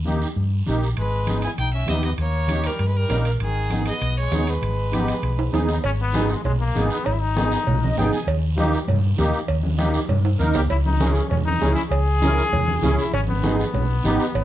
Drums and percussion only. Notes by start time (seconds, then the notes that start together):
0.05 high conga, short guiro
0.22 short guiro
0.37 high conga, long guiro
0.66 high conga, short guiro
0.83 short guiro
0.97 high conga, high timbale, long guiro
1.27 high conga, high timbale, short guiro
1.42 high timbale, short guiro
1.57 high conga, high timbale, long guiro
1.86 high conga, high timbale, low timbale, short guiro
2.03 high timbale, short guiro
2.18 high conga, high timbale, long guiro
2.48 high conga, high timbale, short guiro
2.64 high timbale, short guiro
2.79 high conga, high timbale, long guiro
3.10 high conga, high timbale, low timbale, short guiro
3.25 high timbale, short guiro
3.40 high conga, high timbale, long guiro
3.70 high conga, high timbale, short guiro
3.86 high timbale, short guiro
4.02 high conga, high timbale, long guiro
4.32 high conga, high timbale, low timbale, short guiro
4.47 high timbale, short guiro
4.63 high conga, high timbale, long guiro
4.93 high conga, high timbale, short guiro
5.08 high timbale, short guiro
5.23 high conga, high timbale, long guiro
5.39 high timbale
5.53 high conga, high timbale, short guiro
5.69 low timbale, short guiro
5.84 cowbell, high conga, long guiro
6.14 high conga, short guiro
6.29 short guiro
6.44 cowbell, high conga, low conga, long guiro
6.75 high conga, short guiro
6.90 short guiro
7.05 cowbell, high conga, long guiro
7.37 high conga, short guiro
7.52 short guiro
7.67 cowbell, high conga, low conga, long guiro
7.84 high conga
7.97 high conga, low timbale, short guiro
8.13 short guiro
8.27 cowbell, high conga, long guiro
8.58 high conga, short guiro
8.73 short guiro
8.88 cowbell, high conga, low conga, long guiro
9.18 high conga, low timbale, short guiro
9.34 short guiro
9.48 cowbell, high conga, long guiro
9.63 high conga
9.79 high conga, short guiro
9.94 short guiro
10.09 cowbell, high conga, low conga, long guiro
10.25 high timbale
10.39 high conga, short guiro
10.54 low timbale, short guiro
10.69 cowbell, high conga, long guiro
10.86 high conga
11.00 high conga, short guiro
11.15 short guiro
11.30 cowbell, high conga, low conga, long guiro
11.47 high conga
11.62 high conga, low timbale, short guiro
11.76 short guiro
11.92 cowbell, high conga, long guiro
12.22 high conga, short guiro
12.38 short guiro
12.53 cowbell, high conga, low conga, long guiro
12.68 high conga
12.82 high conga, low conga, low timbale, short guiro
12.99 short guiro
13.12 cowbell, high conga, long guiro
13.28 high conga
13.44 high conga, short guiro
13.59 short guiro
13.74 cowbell, high conga, low conga, long guiro
14.04 high conga, short guiro
14.20 short guiro
14.35 cowbell, high conga, long guiro